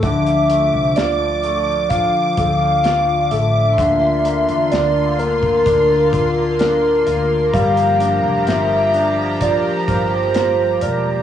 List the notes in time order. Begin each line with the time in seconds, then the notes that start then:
0.02 D2 D3 F3 E5 D6, kick, closed hi-hat
0.27 closed hi-hat
0.50 A3, closed hi-hat
0.73 C2
0.96 D2 F4 D5, snare, closed hi-hat
1.43 A3, closed hi-hat
1.89 F4 F5, kick, closed hi-hat
2.37 D2 A4 F5, kick, closed hi-hat
2.84 F4, snare, closed hi-hat
3.31 A1 A4 E5, closed hi-hat
3.78 D2 D3 A#3 F4 C6, kick, closed hi-hat
4.25 A#3, closed hi-hat
4.48 E2, closed hi-hat
4.71 D2 D4 D5, snare, closed hi-hat
5.19 A#3 A#4, closed hi-hat
5.43 kick
5.66 D2 D4, kick, closed hi-hat
6.13 F4, kick, closed hi-hat
6.59 D4 A#4, snare, closed hi-hat
7.07 D2 F4, closed hi-hat
7.53 G1 F3 G3 G4 F5 A#5, kick, closed hi-hat
7.77 closed hi-hat
8.00 D4, closed hi-hat
8.23 F1
8.47 G1 F4 E5, snare, closed hi-hat
8.94 D4, closed hi-hat
9.41 F4 D5, kick, closed hi-hat
9.88 G1 A#4 C5, kick, closed hi-hat
10.34 F4, snare, closed hi-hat
10.81 E1 A#4 D5, closed hi-hat